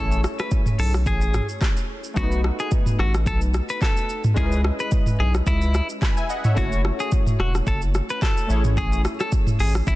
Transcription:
Already playing: A1 A3 C#4 E4 G#4 A4 C#5
0.12 shaker
0.24 cross-stick, shaker
0.39 B4, cross-stick, shaker
0.51 kick, shaker
0.66 mid tom, shaker
0.79 B1 A4, open hi-hat
0.94 cross-stick, shaker
1.06 A1 G#4, kick, shaker
1.21 shaker
1.34 cross-stick, mid tom, shaker
1.49 shaker
1.61 kick, cross-stick, clap, shaker
1.77 shaker
2.04 shaker
2.14 B1 A3 B3 C#4 F#4, kick, shaker
2.19 B4
2.23 D#4
2.32 shaker
2.44 cross-stick
2.59 G#4, shaker
2.71 kick, shaker
2.86 mid tom, shaker
2.99 A1 F#4, cross-stick
3.14 cross-stick, shaker
3.26 B1 A4, kick, shaker
3.41 shaker
3.54 cross-stick, shaker
3.69 B4, shaker
3.82 A4, kick, cross-stick, clap, shaker
3.97 shaker
4.09 shaker
4.24 mid tom, shaker
4.34 C#2 G#3 C#4 E4 G#4 D#5, kick, shaker
4.39 A#4
4.46 B4
4.52 shaker
4.64 cross-stick
4.79 B4, shaker
4.91 kick, shaker
5.06 mid tom, shaker
5.19 B1 G#4
5.34 cross-stick, shaker
5.46 C#2 E4, kick, shaker
5.62 shaker
5.74 cross-stick, shaker
5.89 shaker
6.02 G#5 B5, kick, cross-stick, clap, shaker
6.17 E5 G#5, shaker
6.29 D#5 F#5, shaker
6.44 C#5 E5, mid tom, shaker
6.55 F#1 A3 C#4 E4 F#4, kick, shaker
6.60 C#5
6.72 shaker
6.85 cross-stick
7.00 G#4, shaker
7.12 kick, shaker
7.27 mid tom, shaker
7.39 E1 F#4, cross-stick
7.55 cross-stick, shaker
7.67 F#1 A4, kick, shaker
7.82 shaker
7.94 cross-stick, shaker
8.10 B4, shaker
8.22 A4, kick, cross-stick, clap, shaker
8.37 shaker
8.47 A1 A3 C#4 E4 G#4, shaker
8.52 C#5
8.64 mid tom, shaker
8.77 G#4, kick, shaker
8.92 shaker
9.05 cross-stick, shaker
9.20 A4, cross-stick, shaker
9.32 kick, shaker
9.47 mid tom, shaker
9.59 A1 G#4, open hi-hat
9.75 cross-stick, shaker
9.87 G#1 E4, kick, shaker

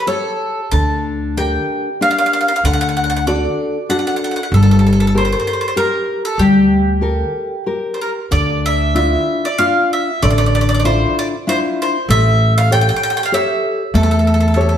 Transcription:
0.07 G4 A4 C#5
0.71 D2 D3 A5
1.37 D4 G4 A#4 G5
2.01 D4 G4 A#4 F5
2.11 F5
2.18 F5
2.26 F5
2.33 F5
2.41 F5
2.48 F5
2.56 F5
2.64 D2 D3 F#5
2.73 F#5
2.81 F#5
2.89 F#5
2.97 F#5
3.04 F#5
3.10 F#5
3.16 F#5
3.27 D4 F#4 A4 D5
3.89 D4 F#4 A4 F#5
3.99 F#5
4.07 F#5
4.16 F#5
4.24 F#5
4.31 F#5
4.36 F#5
4.43 F#5
4.52 G1 G3 A4
4.63 A4
4.71 A4
4.79 A4
4.87 A4
4.93 A4
5.00 A4
5.07 A4
5.15 G4 A4 A#4 C5
5.25 C5
5.32 C5
5.40 C5
5.47 C5
5.53 C5
5.61 C5
5.68 C5
5.76 G4 A#4
6.25 A4
6.38 D2 G3 G4
7.01 G4 A4 A#4
7.66 G4 A#4
7.94 C5
8.01 A#4
8.31 D2 D3 D5
8.66 E5
8.95 D4 E4 F4 E5
9.45 D5
9.58 D4 F4 F5
9.93 E5
10.22 A1 D3 D5
10.30 D5
10.38 D5
10.46 D5
10.55 D5
10.61 D5
10.69 D5
10.74 D5
10.80 D5
10.84 D4 E4 F4 C5
11.19 D5
11.47 D4 E4 F4 C5
11.82 C5
12.09 A1 A3 E5
12.58 F5
12.71 G4 A4 C#5 G5
12.81 G5
12.89 G5
12.96 G5
13.03 G5
13.10 G5
13.17 G5
13.23 F5 G5
13.32 G4 A4 C#5 E5
13.94 E2 A3 A4
14.03 A4
14.11 A4
14.19 A4
14.27 A4
14.34 A4
14.40 A4
14.48 A4
14.54 G4 A4 C#5
14.61 A4
14.69 A4

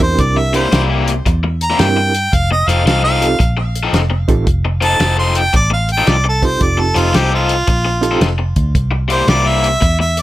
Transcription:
0.00 E2 C4 D4 E4 G4 A#4 C5, kick, closed hi-hat
0.19 C2 D5, kick, closed hi-hat
0.37 E5, muted overdriven electric guitar stroke
0.53 C3 G3 A#3 E4 C5, closed hi-hat
0.72 C2 C3 G3 A#3 E4, snare, closed hi-hat
0.89 C3 G3 A#3 E4
1.08 closed hi-hat
1.26 E2, muted overdriven electric guitar stroke, kick, closed hi-hat
1.43 muted overdriven electric guitar stroke
1.61 A#5, closed hi-hat
1.70 C3 G3 A#3 E4
1.79 G2 C4 D4 E4 G4 A#4 G5, snare, closed hi-hat
1.97 muted overdriven electric guitar stroke
2.15 closed hi-hat
2.33 F1 F5, kick, closed hi-hat
2.51 D#5, muted overdriven electric guitar stroke
2.68 F1 F3 C4 D#4 A4 F5, closed hi-hat
2.86 C2 F3 C4 D#4 A4 F5, snare, closed hi-hat
3.04 F3 C4 D#4 A4 F5
3.21 C4 D#4 F4 G4 A4, closed hi-hat
3.39 A#1, muted overdriven electric guitar stroke, kick, closed hi-hat
3.57 muted overdriven electric guitar stroke
3.75 closed hi-hat
3.83 F3 C4 D#4 A4
3.93 F1, snare, closed hi-hat
4.10 muted overdriven electric guitar stroke
4.28 A1 C4 D#4 F4 G4 A4, kick, closed hi-hat
4.47 F1, kick, closed hi-hat
4.65 muted overdriven electric guitar stroke
4.81 F3 C4 D#4 A4 A5, closed hi-hat
5.00 F1 F3 C4 D#4 A4, snare, closed hi-hat
5.17 F3 C4 D#4 A4 C6
5.35 G5, closed hi-hat
5.53 A1 D5, muted overdriven electric guitar stroke, kick, closed hi-hat
5.70 F5, muted overdriven electric guitar stroke
5.89 G5, closed hi-hat
5.98 F3 C4 D#4 A4
6.07 C2 D5, snare, closed hi-hat
6.24 muted overdriven electric guitar stroke
6.29 A4
6.42 C4 D#4 F4 G4 A4 C5, kick, closed hi-hat
6.61 F1 D5, kick, closed hi-hat
6.78 A4, muted overdriven electric guitar stroke
6.95 F1 F3 C4 D#4 F4 A4, closed hi-hat
7.13 C2 F3 C4 D#4 G4 A4, snare, closed hi-hat
7.31 F3 C4 D#4 F4 A4
7.49 closed hi-hat
7.67 A#1, muted overdriven electric guitar stroke, kick, closed hi-hat
7.85 muted overdriven electric guitar stroke
8.01 C4 D#4 F4 G4 A4, closed hi-hat
8.11 F3 C4 D#4 A4
8.21 F1, snare, closed hi-hat
8.38 muted overdriven electric guitar stroke
8.56 D2, kick, closed hi-hat
8.75 C2, kick, closed hi-hat
8.91 muted overdriven electric guitar stroke
9.08 C3 G3 A#3 E4 C5, closed hi-hat
9.28 C2 C3 G3 A#3 E4 D5, snare, closed hi-hat
9.44 C3 G3 A#3 E4 E5
9.64 closed hi-hat
9.81 E2, muted overdriven electric guitar stroke, kick, closed hi-hat
9.99 E5, muted overdriven electric guitar stroke
10.17 closed hi-hat

